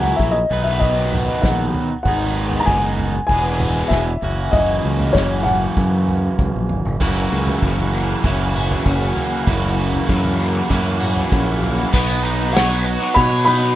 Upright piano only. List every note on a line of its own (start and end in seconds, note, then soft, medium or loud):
0.00 0.18 F#5 medium
0.16 0.34 E5 medium
0.31 0.62 D#5 medium
0.64 0.81 E5 medium
0.80 1.45 D#5 medium
1.42 2.01 F#5 medium
2.03 2.61 F#5 medium
2.60 2.67 A#5 medium
2.65 3.25 G#5 medium
3.27 3.92 G#5 medium
3.88 4.54 E5 medium
4.52 5.16 D#5 medium
5.13 5.43 C#5 medium
5.43 6.33 F#5 medium
12.53 13.17 F#5 medium
13.14 13.43 B5 loud
13.45 13.75 B5 loud